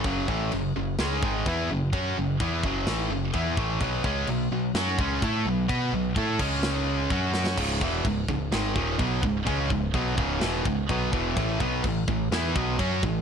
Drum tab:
CC |x---x---x---x---|x---x---x---x---|x---x---x---x---|x---x-x-x---x---|
SD |--------o-------|--------o-------|--------o-------|--------o-----oo|
BD |o-o-------o-o---|o---o-o-----o-o-|o-o-------o-o---|o---o-o-----o---|

CC |x---x---x---x---|x---x---x---x---|x---x---x---x---|
SD |--------o-------|--------o-------|--------o-------|
BD |o-o-o-o---o-o-o-|o-o-o-o---o-o-o-|o-o-o-o---o-o-o-|